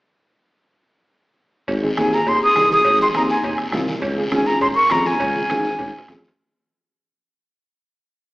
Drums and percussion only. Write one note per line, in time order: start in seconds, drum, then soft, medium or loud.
1.68 bombo low medium
1.68 cowbell loud
1.68 high conga soft
1.68 long guiro medium
1.84 high conga medium
1.97 bombo rim medium
1.97 high conga loud
1.97 short guiro medium
2.13 short guiro medium
2.27 bombo low medium
2.27 cowbell medium
2.27 low conga medium
2.27 long guiro medium
2.41 high conga soft
2.56 bombo rim medium
2.56 high conga medium
2.56 short guiro medium
2.71 high conga medium
2.71 short guiro medium
2.85 bombo low medium
2.85 cowbell loud
2.85 high conga soft
2.85 low conga medium
2.85 long guiro medium
3.00 high conga medium
3.14 bombo rim medium
3.14 high conga loud
3.14 short guiro medium
3.30 short guiro medium
3.43 bombo low medium
3.43 cowbell medium
3.43 low conga medium
3.43 long guiro medium
3.58 bombo rim medium
3.58 high conga soft
3.72 bombo rim medium
3.72 high conga medium
3.72 low conga medium
3.72 low timbale medium
3.72 short guiro medium
3.88 high conga medium
3.88 short guiro medium
4.02 bombo low medium
4.02 cowbell loud
4.02 high conga soft
4.02 long guiro medium
4.32 bombo rim medium
4.32 high conga loud
4.32 short guiro medium
4.46 short guiro medium
4.61 bombo low medium
4.61 cowbell medium
4.61 low conga medium
4.61 long guiro medium
4.76 high conga soft
4.90 bombo low medium
4.90 bombo rim medium
4.90 high conga medium
4.90 low timbale medium
4.90 short guiro medium
5.06 short guiro medium
5.20 bombo low medium
5.20 cowbell loud
5.20 high conga soft
5.20 low conga medium
5.20 long guiro medium
5.35 high conga medium
5.50 bombo rim medium
5.50 high conga loud
5.50 high timbale loud
5.50 short guiro medium
5.60 high timbale medium
5.64 short guiro medium
5.70 high timbale medium
5.79 bombo low medium
5.79 cowbell medium
5.79 low conga medium
5.79 high timbale medium
5.79 long guiro medium
5.98 low timbale medium
6.08 bombo low medium
6.08 bombo rim medium
6.08 high conga medium
6.08 low conga medium
6.08 low timbale medium
6.08 short guiro medium
6.18 low timbale medium
6.24 high conga medium
6.24 short guiro medium
6.28 low timbale medium